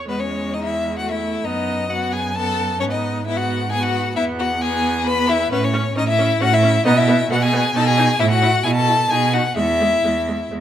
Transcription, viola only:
0, 0, Header, 1, 2, 480
1, 0, Start_track
1, 0, Key_signature, 4, "major"
1, 0, Tempo, 450789
1, 97, Time_signature, 3, 2, 24, 8
1, 9214, Tempo, 467654
1, 11216, End_track
2, 0, Start_track
2, 0, Title_t, "Viola"
2, 0, Program_c, 0, 41
2, 94, Note_on_c, 0, 56, 81
2, 1060, Note_on_c, 0, 57, 72
2, 1076, Note_off_c, 0, 56, 0
2, 1542, Note_on_c, 0, 59, 82
2, 1558, Note_off_c, 0, 57, 0
2, 2024, Note_off_c, 0, 59, 0
2, 2031, Note_on_c, 0, 59, 72
2, 2502, Note_off_c, 0, 59, 0
2, 2509, Note_on_c, 0, 59, 72
2, 2980, Note_off_c, 0, 59, 0
2, 2988, Note_on_c, 0, 59, 75
2, 3461, Note_off_c, 0, 59, 0
2, 3475, Note_on_c, 0, 59, 77
2, 3947, Note_off_c, 0, 59, 0
2, 3957, Note_on_c, 0, 59, 78
2, 4426, Note_off_c, 0, 59, 0
2, 4431, Note_on_c, 0, 59, 85
2, 4904, Note_off_c, 0, 59, 0
2, 4910, Note_on_c, 0, 59, 85
2, 5379, Note_off_c, 0, 59, 0
2, 5386, Note_on_c, 0, 59, 83
2, 5861, Note_off_c, 0, 59, 0
2, 5871, Note_on_c, 0, 61, 93
2, 5956, Note_off_c, 0, 61, 0
2, 6107, Note_on_c, 0, 61, 98
2, 6192, Note_off_c, 0, 61, 0
2, 6349, Note_on_c, 0, 61, 89
2, 6434, Note_off_c, 0, 61, 0
2, 6590, Note_on_c, 0, 61, 90
2, 6675, Note_off_c, 0, 61, 0
2, 6823, Note_on_c, 0, 61, 94
2, 6908, Note_off_c, 0, 61, 0
2, 7059, Note_on_c, 0, 61, 90
2, 7144, Note_off_c, 0, 61, 0
2, 7297, Note_on_c, 0, 59, 117
2, 7383, Note_off_c, 0, 59, 0
2, 7537, Note_on_c, 0, 59, 101
2, 7622, Note_off_c, 0, 59, 0
2, 7780, Note_on_c, 0, 59, 97
2, 7865, Note_off_c, 0, 59, 0
2, 8017, Note_on_c, 0, 59, 100
2, 8103, Note_off_c, 0, 59, 0
2, 8257, Note_on_c, 0, 63, 96
2, 8342, Note_off_c, 0, 63, 0
2, 8495, Note_on_c, 0, 63, 96
2, 8580, Note_off_c, 0, 63, 0
2, 8729, Note_on_c, 0, 64, 113
2, 8814, Note_off_c, 0, 64, 0
2, 8967, Note_on_c, 0, 64, 99
2, 9052, Note_off_c, 0, 64, 0
2, 9205, Note_on_c, 0, 64, 93
2, 9288, Note_off_c, 0, 64, 0
2, 9439, Note_on_c, 0, 64, 82
2, 9521, Note_off_c, 0, 64, 0
2, 9678, Note_on_c, 0, 63, 74
2, 9760, Note_off_c, 0, 63, 0
2, 9912, Note_on_c, 0, 63, 72
2, 9994, Note_off_c, 0, 63, 0
2, 10148, Note_on_c, 0, 56, 89
2, 10230, Note_off_c, 0, 56, 0
2, 10395, Note_on_c, 0, 56, 87
2, 10477, Note_off_c, 0, 56, 0
2, 10643, Note_on_c, 0, 56, 83
2, 10725, Note_off_c, 0, 56, 0
2, 10884, Note_on_c, 0, 56, 73
2, 10966, Note_off_c, 0, 56, 0
2, 11124, Note_on_c, 0, 56, 70
2, 11206, Note_off_c, 0, 56, 0
2, 11216, End_track
0, 0, End_of_file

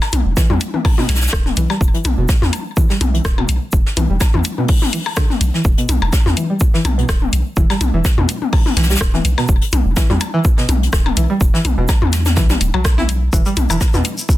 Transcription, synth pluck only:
0, 0, Header, 1, 2, 480
1, 0, Start_track
1, 0, Key_signature, 1, "minor"
1, 0, Tempo, 480000
1, 1809, Time_signature, 4, 2, 24, 8
1, 14377, End_track
2, 0, Start_track
2, 0, Title_t, "Synth pluck"
2, 0, Program_c, 0, 84
2, 368, Note_on_c, 0, 52, 86
2, 463, Note_off_c, 0, 52, 0
2, 499, Note_on_c, 0, 55, 76
2, 531, Note_off_c, 0, 55, 0
2, 739, Note_on_c, 0, 52, 75
2, 771, Note_off_c, 0, 52, 0
2, 979, Note_on_c, 0, 47, 97
2, 1058, Note_off_c, 0, 47, 0
2, 1569, Note_on_c, 0, 52, 75
2, 1664, Note_off_c, 0, 52, 0
2, 1700, Note_on_c, 0, 55, 76
2, 1732, Note_off_c, 0, 55, 0
2, 1940, Note_on_c, 0, 52, 78
2, 1971, Note_off_c, 0, 52, 0
2, 2180, Note_on_c, 0, 47, 104
2, 2258, Note_off_c, 0, 47, 0
2, 2769, Note_on_c, 0, 52, 83
2, 2864, Note_off_c, 0, 52, 0
2, 2900, Note_on_c, 0, 55, 74
2, 2932, Note_off_c, 0, 55, 0
2, 3140, Note_on_c, 0, 52, 76
2, 3172, Note_off_c, 0, 52, 0
2, 3380, Note_on_c, 0, 47, 100
2, 3458, Note_off_c, 0, 47, 0
2, 3969, Note_on_c, 0, 52, 73
2, 4064, Note_off_c, 0, 52, 0
2, 4100, Note_on_c, 0, 55, 77
2, 4131, Note_off_c, 0, 55, 0
2, 4340, Note_on_c, 0, 52, 74
2, 4371, Note_off_c, 0, 52, 0
2, 4580, Note_on_c, 0, 47, 102
2, 4659, Note_off_c, 0, 47, 0
2, 4929, Note_on_c, 0, 52, 76
2, 4967, Note_off_c, 0, 52, 0
2, 5169, Note_on_c, 0, 50, 100
2, 5232, Note_off_c, 0, 50, 0
2, 5540, Note_on_c, 0, 52, 77
2, 5618, Note_off_c, 0, 52, 0
2, 5780, Note_on_c, 0, 47, 99
2, 5859, Note_off_c, 0, 47, 0
2, 6369, Note_on_c, 0, 52, 78
2, 6463, Note_off_c, 0, 52, 0
2, 6500, Note_on_c, 0, 55, 77
2, 6531, Note_off_c, 0, 55, 0
2, 6739, Note_on_c, 0, 52, 98
2, 6792, Note_off_c, 0, 52, 0
2, 6979, Note_on_c, 0, 47, 103
2, 7058, Note_off_c, 0, 47, 0
2, 7568, Note_on_c, 0, 52, 84
2, 7663, Note_off_c, 0, 52, 0
2, 7699, Note_on_c, 0, 55, 77
2, 7731, Note_off_c, 0, 55, 0
2, 7939, Note_on_c, 0, 52, 101
2, 7992, Note_off_c, 0, 52, 0
2, 8179, Note_on_c, 0, 47, 101
2, 8258, Note_off_c, 0, 47, 0
2, 8768, Note_on_c, 0, 52, 79
2, 8863, Note_off_c, 0, 52, 0
2, 8899, Note_on_c, 0, 55, 75
2, 8931, Note_off_c, 0, 55, 0
2, 9139, Note_on_c, 0, 52, 101
2, 9192, Note_off_c, 0, 52, 0
2, 9378, Note_on_c, 0, 47, 103
2, 9458, Note_off_c, 0, 47, 0
2, 9967, Note_on_c, 0, 52, 83
2, 10063, Note_off_c, 0, 52, 0
2, 10099, Note_on_c, 0, 55, 76
2, 10131, Note_off_c, 0, 55, 0
2, 10339, Note_on_c, 0, 52, 105
2, 10392, Note_off_c, 0, 52, 0
2, 10579, Note_on_c, 0, 47, 97
2, 10658, Note_off_c, 0, 47, 0
2, 11168, Note_on_c, 0, 52, 75
2, 11263, Note_off_c, 0, 52, 0
2, 11299, Note_on_c, 0, 55, 80
2, 11331, Note_off_c, 0, 55, 0
2, 11539, Note_on_c, 0, 52, 102
2, 11592, Note_off_c, 0, 52, 0
2, 11779, Note_on_c, 0, 47, 102
2, 11858, Note_off_c, 0, 47, 0
2, 12369, Note_on_c, 0, 52, 84
2, 12464, Note_off_c, 0, 52, 0
2, 12500, Note_on_c, 0, 55, 77
2, 12531, Note_off_c, 0, 55, 0
2, 12740, Note_on_c, 0, 54, 100
2, 12792, Note_off_c, 0, 54, 0
2, 12980, Note_on_c, 0, 64, 99
2, 13032, Note_off_c, 0, 64, 0
2, 13329, Note_on_c, 0, 52, 81
2, 13423, Note_off_c, 0, 52, 0
2, 13459, Note_on_c, 0, 55, 79
2, 13491, Note_off_c, 0, 55, 0
2, 13700, Note_on_c, 0, 52, 101
2, 13752, Note_off_c, 0, 52, 0
2, 13940, Note_on_c, 0, 47, 98
2, 14019, Note_off_c, 0, 47, 0
2, 14377, End_track
0, 0, End_of_file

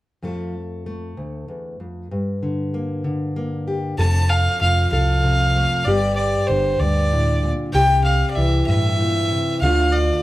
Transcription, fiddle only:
0, 0, Header, 1, 2, 480
1, 0, Start_track
1, 0, Tempo, 626305
1, 172, Time_signature, 6, 3, 24, 8
1, 7836, End_track
2, 0, Start_track
2, 0, Title_t, "Fiddle"
2, 0, Program_c, 0, 110
2, 3051, Note_on_c, 0, 81, 83
2, 3291, Note_on_c, 0, 77, 77
2, 3302, Note_off_c, 0, 81, 0
2, 3528, Note_off_c, 0, 77, 0
2, 3533, Note_on_c, 0, 77, 73
2, 3757, Note_off_c, 0, 77, 0
2, 3769, Note_on_c, 0, 77, 81
2, 4483, Note_on_c, 0, 74, 80
2, 4495, Note_off_c, 0, 77, 0
2, 4712, Note_off_c, 0, 74, 0
2, 4717, Note_on_c, 0, 74, 71
2, 4962, Note_on_c, 0, 72, 68
2, 4973, Note_off_c, 0, 74, 0
2, 5207, Note_on_c, 0, 74, 78
2, 5219, Note_off_c, 0, 72, 0
2, 5751, Note_off_c, 0, 74, 0
2, 5924, Note_on_c, 0, 79, 83
2, 6152, Note_off_c, 0, 79, 0
2, 6161, Note_on_c, 0, 77, 73
2, 6340, Note_off_c, 0, 77, 0
2, 6364, Note_on_c, 0, 74, 47
2, 6403, Note_on_c, 0, 76, 72
2, 6415, Note_off_c, 0, 74, 0
2, 6635, Note_off_c, 0, 76, 0
2, 6640, Note_on_c, 0, 76, 84
2, 7336, Note_off_c, 0, 76, 0
2, 7365, Note_on_c, 0, 77, 75
2, 7602, Note_on_c, 0, 74, 67
2, 7614, Note_off_c, 0, 77, 0
2, 7836, Note_off_c, 0, 74, 0
2, 7836, End_track
0, 0, End_of_file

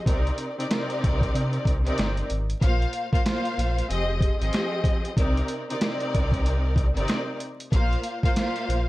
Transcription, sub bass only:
0, 0, Header, 1, 2, 480
1, 0, Start_track
1, 0, Tempo, 638298
1, 48, Time_signature, 4, 2, 24, 8
1, 6682, End_track
2, 0, Start_track
2, 0, Title_t, "Sub bass"
2, 0, Program_c, 0, 38
2, 49, Note_on_c, 0, 36, 102
2, 231, Note_off_c, 0, 36, 0
2, 784, Note_on_c, 0, 36, 92
2, 960, Note_off_c, 0, 36, 0
2, 1010, Note_on_c, 0, 48, 109
2, 1192, Note_off_c, 0, 48, 0
2, 1246, Note_on_c, 0, 36, 97
2, 1429, Note_off_c, 0, 36, 0
2, 1492, Note_on_c, 0, 31, 92
2, 1673, Note_off_c, 0, 31, 0
2, 1732, Note_on_c, 0, 32, 91
2, 1913, Note_off_c, 0, 32, 0
2, 1968, Note_on_c, 0, 34, 108
2, 2150, Note_off_c, 0, 34, 0
2, 2691, Note_on_c, 0, 34, 94
2, 2872, Note_off_c, 0, 34, 0
2, 2931, Note_on_c, 0, 29, 116
2, 3223, Note_off_c, 0, 29, 0
2, 3317, Note_on_c, 0, 32, 97
2, 3387, Note_off_c, 0, 32, 0
2, 3888, Note_on_c, 0, 36, 110
2, 4071, Note_off_c, 0, 36, 0
2, 4623, Note_on_c, 0, 36, 95
2, 5211, Note_off_c, 0, 36, 0
2, 5237, Note_on_c, 0, 31, 92
2, 5307, Note_off_c, 0, 31, 0
2, 5807, Note_on_c, 0, 34, 106
2, 5990, Note_off_c, 0, 34, 0
2, 6532, Note_on_c, 0, 34, 94
2, 6682, Note_off_c, 0, 34, 0
2, 6682, End_track
0, 0, End_of_file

